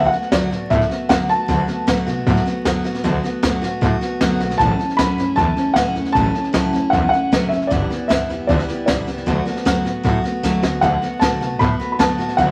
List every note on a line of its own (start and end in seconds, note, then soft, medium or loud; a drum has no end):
0.00 0.13 D3 medium
0.00 0.13 F#3 medium
0.00 0.13 A3 medium
0.00 0.13 B3 medium
0.00 0.11 F#4 loud
0.06 0.32 F#5 medium
0.12 0.32 A3 soft
0.12 0.32 B3 soft
0.12 0.32 F#4 medium
0.12 snare soft
0.22 snare soft
0.32 0.47 F#2 medium
0.32 0.51 D3 medium
0.32 0.52 F#3 medium
0.32 0.52 A3 medium
0.32 0.51 B3 medium
0.32 0.50 F#4 medium
0.32 0.72 D5 medium
0.32 kick medium
0.32 snare loud
0.32 hi-hat pedal medium
0.51 0.66 A2 medium
0.51 0.70 A3 soft
0.51 0.71 B3 medium
0.51 0.71 F#4 medium
0.51 snare soft
0.70 0.86 A2 loud
0.70 0.90 F#3 medium
0.70 0.91 A3 medium
0.70 0.90 B3 medium
0.70 0.88 F#4 medium
0.70 1.11 E5 medium
0.70 kick loud
0.70 snare soft
0.81 snare soft
0.89 1.09 A3 soft
0.89 1.10 B3 medium
0.89 1.09 F#4 medium
0.89 muted upright bass stroke medium
0.89 snare soft
1.09 1.24 F#2 medium
1.09 1.29 D3 medium
1.09 1.29 F#3 medium
1.09 1.30 A3 medium
1.09 1.30 B3 medium
1.09 1.28 F#4 loud
1.09 1.28 F#5 medium
1.09 kick medium
1.09 snare loud
1.09 hi-hat pedal medium
1.29 1.44 D2 medium
1.29 1.48 A3 soft
1.29 1.48 B3 soft
1.29 1.49 F#4 soft
1.29 1.84 A5 loud
1.29 snare soft
1.48 1.63 D2 loud
1.48 1.68 D3 medium
1.48 1.68 F#3 medium
1.48 1.68 A3 medium
1.48 1.68 B3 medium
1.48 1.66 F#4 medium
1.48 kick loud
1.48 snare soft
1.67 1.87 A3 soft
1.67 1.87 B3 soft
1.67 1.87 F#4 medium
1.67 muted upright bass stroke medium
1.67 snare soft
1.87 2.02 A2 medium
1.87 2.07 D3 medium
1.87 2.07 F#3 loud
1.87 2.07 A3 loud
1.87 2.07 B3 medium
1.87 2.05 F#4 loud
1.87 kick medium
1.87 snare loud
1.87 hi-hat pedal medium
2.07 2.22 C3 medium
2.07 2.27 A3 medium
2.07 2.27 B3 medium
2.07 2.26 F#4 medium
2.07 snare soft
2.26 2.41 A2 loud
2.26 2.46 F#3 medium
2.26 2.47 A3 medium
2.26 2.46 B3 medium
2.26 2.45 F#4 medium
2.26 kick loud
2.26 snare soft
2.36 snare soft
2.46 2.66 A3 medium
2.46 2.66 B3 medium
2.46 2.65 F#4 medium
2.46 muted upright bass stroke medium
2.46 snare soft
2.65 2.80 F#2 medium
2.65 2.85 D3 medium
2.65 2.85 F#3 medium
2.65 2.86 A3 medium
2.65 2.85 B3 loud
2.65 2.83 F#4 loud
2.65 kick medium
2.65 snare loud
2.65 hi-hat pedal medium
2.84 3.04 A3 medium
2.84 3.04 B3 medium
2.84 3.04 F#4 medium
2.84 snare soft
2.94 snare soft
3.04 3.19 D2 loud
3.04 3.24 D3 medium
3.04 3.24 F#3 medium
3.04 3.24 A3 medium
3.04 3.24 B3 loud
3.04 3.22 F#4 medium
3.04 kick loud
3.04 snare soft
3.23 3.43 A3 soft
3.23 3.43 B3 medium
3.23 3.43 F#4 medium
3.23 muted upright bass stroke medium
3.23 snare soft
3.43 3.58 F#2 medium
3.43 3.62 D3 medium
3.43 3.63 F#3 loud
3.43 3.63 A3 medium
3.43 3.62 B3 medium
3.43 3.60 F#4 loud
3.43 kick medium
3.43 snare loud
3.43 hi-hat pedal medium
3.62 3.77 A2 medium
3.62 3.81 A3 medium
3.62 3.82 B3 medium
3.62 3.82 F#4 medium
3.62 snare soft
3.81 3.97 A2 loud
3.81 4.01 F#3 medium
3.81 4.02 A3 medium
3.81 4.02 B3 medium
3.81 4.00 F#4 medium
3.81 kick loud
3.81 snare soft
4.01 4.21 A3 medium
4.01 4.21 B3 medium
4.01 4.21 F#4 medium
4.01 muted upright bass stroke medium
4.01 snare soft
4.21 4.36 F#2 medium
4.21 4.40 D3 medium
4.21 4.41 F#3 loud
4.21 4.41 A3 loud
4.21 4.41 B3 loud
4.21 4.39 F#4 medium
4.21 kick medium
4.21 snare loud
4.21 hi-hat pedal medium
4.40 4.55 B1 medium
4.40 4.60 A3 soft
4.40 4.61 B3 medium
4.40 4.60 F#4 medium
4.40 snare soft
4.50 snare soft
4.58 4.75 A1 medium
4.58 4.79 A2 medium
4.58 4.80 F#3 medium
4.58 4.80 A3 medium
4.58 4.80 C#4 medium
4.58 4.78 E4 medium
4.58 4.99 A5 loud
4.58 kick loud
4.58 snare soft
4.79 4.99 A3 soft
4.79 4.99 C#4 soft
4.79 4.99 E4 soft
4.79 muted upright bass stroke medium
4.79 snare soft
4.90 snare soft
4.97 5.13 E2 medium
4.97 5.18 A2 medium
4.97 5.18 F#3 medium
4.97 5.19 A3 medium
4.97 5.19 C#4 medium
4.97 5.38 B5 loud
4.97 kick medium
4.97 snare loud
4.97 hi-hat pedal medium
5.01 5.17 E4 medium
5.18 5.33 G2 medium
5.18 5.37 A3 soft
5.18 5.38 C#4 medium
5.18 5.38 E4 medium
5.18 snare soft
5.36 5.52 E2 loud
5.36 5.57 F#3 medium
5.36 5.57 A3 medium
5.36 5.57 C#4 medium
5.36 5.55 E4 medium
5.36 5.77 A5 loud
5.36 kick loud
5.36 snare soft
5.57 5.76 A3 soft
5.57 5.77 C#4 medium
5.57 5.76 E4 medium
5.57 muted upright bass stroke medium
5.57 snare soft
5.74 5.91 C#2 medium
5.74 5.96 A2 medium
5.74 5.96 F#3 medium
5.74 5.97 A3 medium
5.74 6.15 F#5 loud
5.74 kick medium
5.74 snare loud
5.74 hi-hat pedal medium
5.78 5.96 C#4 medium
5.78 5.94 E4 medium
5.95 6.11 E2 medium
5.95 6.15 A3 soft
5.95 6.16 C#4 soft
5.95 6.15 E4 medium
5.95 snare soft
6.05 snare soft
6.12 6.30 A1 medium
6.12 6.35 A2 medium
6.12 6.35 F#3 medium
6.12 6.35 A3 medium
6.12 6.94 A5 loud
6.12 kick loud
6.12 snare soft
6.17 6.34 C#4 medium
6.17 6.33 E4 medium
6.34 6.53 A3 soft
6.34 6.53 C#4 soft
6.34 6.54 E4 soft
6.34 snare soft
6.44 snare soft
6.53 6.69 C#2 medium
6.53 6.73 A2 medium
6.53 6.74 F#3 medium
6.53 6.74 A3 medium
6.53 6.73 C#4 medium
6.53 6.72 E4 loud
6.53 kick medium
6.53 snare loud
6.53 hi-hat pedal medium
6.73 6.89 E2 medium
6.73 6.92 A3 medium
6.73 6.93 C#4 medium
6.73 6.93 E4 medium
6.73 snare soft
6.90 7.08 E2 loud
6.90 7.12 F#3 medium
6.90 7.13 A3 medium
6.90 7.07 F#5 loud
6.90 kick loud
6.90 snare soft
6.94 7.13 C#4 medium
6.94 7.11 E4 medium
7.09 7.32 E4 medium
7.09 7.47 F#5 loud
7.09 snare soft
7.13 7.32 A3 soft
7.13 7.32 C#4 medium
7.13 muted upright bass stroke medium
7.32 7.47 C#2 medium
7.32 7.52 A2 medium
7.32 7.52 F#3 medium
7.32 7.52 A3 medium
7.32 7.52 C#4 loud
7.32 7.50 E4 medium
7.32 kick medium
7.32 snare loud
7.32 hi-hat pedal medium
7.49 7.67 F#1 medium
7.49 7.71 E4 medium
7.49 7.68 E5 medium
7.49 snare soft
7.53 7.71 A3 soft
7.53 7.72 C#4 soft
7.62 snare soft
7.67 7.90 G2 medium
7.67 7.90 D3 medium
7.67 7.91 E3 medium
7.67 8.09 D5 medium
7.67 kick loud
7.71 7.86 G1 medium
7.71 7.91 G3 medium
7.71 7.90 B3 medium
7.71 7.89 E4 medium
7.71 snare soft
7.90 8.09 E3 soft
7.90 8.10 G3 soft
7.90 8.10 B3 soft
7.90 8.10 E4 soft
7.90 muted upright bass stroke medium
7.90 snare soft
8.08 8.25 D2 loud
8.08 8.29 G2 medium
8.08 8.30 D3 medium
8.08 8.30 E3 medium
8.08 8.30 G3 medium
8.08 8.29 B3 medium
8.08 8.28 E4 medium
8.08 8.49 E5 medium
8.08 kick medium
8.08 snare loud
8.08 hi-hat pedal medium
8.29 8.45 E2 loud
8.29 8.47 E3 soft
8.29 8.49 G3 medium
8.29 8.49 B3 medium
8.29 8.49 E4 medium
8.29 snare soft
8.47 8.64 D2 loud
8.47 8.68 E3 medium
8.47 8.69 G3 medium
8.47 8.68 B3 medium
8.47 8.85 D5 medium
8.47 kick loud
8.47 snare soft
8.52 8.67 E4 medium
8.59 snare soft
8.68 8.87 E3 soft
8.68 8.87 G3 soft
8.68 8.88 B3 medium
8.68 8.88 E4 medium
8.68 muted upright bass stroke medium
8.68 snare soft
8.86 9.03 B1 medium
8.86 9.07 G2 medium
8.86 9.07 D3 medium
8.86 9.08 E3 medium
8.86 9.08 G3 medium
8.86 9.07 B3 medium
8.86 9.06 E4 medium
8.86 9.61 D5 medium
8.86 kick medium
8.86 snare loud
8.86 hi-hat pedal medium
9.07 9.22 C#2 medium
9.07 9.26 E3 soft
9.07 9.27 G3 soft
9.07 9.27 B3 medium
9.07 9.27 E4 medium
9.07 snare soft
9.17 snare soft
9.26 9.42 D2 medium
9.26 9.46 D3 medium
9.26 9.46 F#3 medium
9.26 9.47 A3 medium
9.26 9.46 B3 medium
9.26 9.44 F#4 medium
9.26 kick loud
9.26 snare soft
9.45 9.65 A3 soft
9.45 9.66 B3 soft
9.45 9.65 F#4 medium
9.45 snare soft
9.56 snare soft
9.65 9.81 F#2 medium
9.65 9.85 D3 loud
9.65 9.85 F#3 medium
9.65 9.85 A3 medium
9.65 9.85 B3 medium
9.65 9.84 F#4 loud
9.65 kick medium
9.65 snare loud
9.65 hi-hat pedal medium
9.85 10.00 A2 medium
9.85 10.03 A3 soft
9.85 10.04 B3 medium
9.85 10.05 F#4 medium
9.85 snare soft
10.03 10.19 A2 medium
10.03 10.24 F#3 medium
10.03 10.24 A3 medium
10.03 10.24 B3 medium
10.03 10.23 F#4 medium
10.03 kick loud
10.03 snare soft
10.24 10.43 A3 medium
10.24 10.44 B3 medium
10.24 10.44 F#4 medium
10.24 muted upright bass stroke medium
10.24 snare soft
10.43 10.58 F#2 medium
10.43 10.63 D3 loud
10.43 10.63 F#3 medium
10.43 10.64 A3 loud
10.43 10.63 B3 loud
10.43 10.62 F#4 loud
10.43 kick medium
10.43 snare medium
10.43 hi-hat pedal medium
10.63 10.78 D2 medium
10.63 10.82 A3 soft
10.63 10.82 B3 medium
10.63 10.82 F#4 medium
10.63 snare medium
10.81 10.97 D2 medium
10.81 11.02 D3 medium
10.81 11.02 F#3 medium
10.81 11.03 A3 medium
10.81 11.02 B3 loud
10.81 11.01 F#4 loud
10.81 11.22 F#5 loud
10.81 kick loud
10.81 snare soft
11.02 11.21 A3 soft
11.02 11.21 B3 soft
11.02 11.22 F#4 soft
11.02 muted upright bass stroke medium
11.02 snare soft
11.19 11.36 A2 medium
11.19 11.41 D3 medium
11.19 11.41 F#3 medium
11.19 11.41 A3 medium
11.19 11.41 B3 medium
11.19 11.40 F#4 medium
11.19 11.57 A5 medium
11.19 kick medium
11.19 snare loud
11.19 hi-hat pedal medium
11.41 11.56 C3 loud
11.41 11.59 A3 soft
11.41 11.60 B3 medium
11.41 11.61 F#4 medium
11.41 snare soft
11.59 11.75 A2 loud
11.59 11.79 F#3 medium
11.59 11.80 A3 medium
11.59 11.80 B3 medium
11.59 11.78 F#4 medium
11.59 11.90 B5 loud
11.59 kick loud
11.59 snare soft
11.79 11.99 A3 soft
11.79 11.99 B3 soft
11.79 11.99 F#4 medium
11.79 muted upright bass stroke medium
11.79 snare soft
11.92 11.99 B5 medium
11.99 12.14 F#2 medium
11.99 12.19 D3 medium
11.99 12.19 F#3 medium
11.99 12.19 A3 medium
11.99 12.19 B3 medium
11.99 12.17 F#4 loud
11.99 12.39 A5 loud
11.99 kick medium
11.99 snare loud
11.99 hi-hat pedal medium
12.18 12.34 A2 medium
12.18 12.38 A3 soft
12.18 12.38 B3 soft
12.18 12.38 F#4 medium
12.18 snare soft
12.29 snare soft
12.37 12.51 D2 medium
12.37 12.51 D3 medium
12.37 12.51 F#3 medium
12.37 12.51 A3 medium
12.37 12.51 B3 medium
12.37 12.51 F#4 medium
12.37 12.51 F#5 loud
12.37 kick loud
12.37 snare soft